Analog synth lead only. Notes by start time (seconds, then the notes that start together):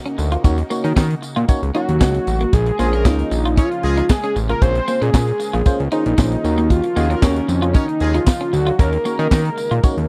1.76 F#4
2.54 G#4
3.06 D#4
3.58 F4
4.10 G#4
4.24 G#4
4.50 A#4
4.62 C5
5.02 G#4
5.92 D#4
6.70 F4
7.22 C#4
7.74 D#4
8.14 F4
8.53 F#4
8.80 A#4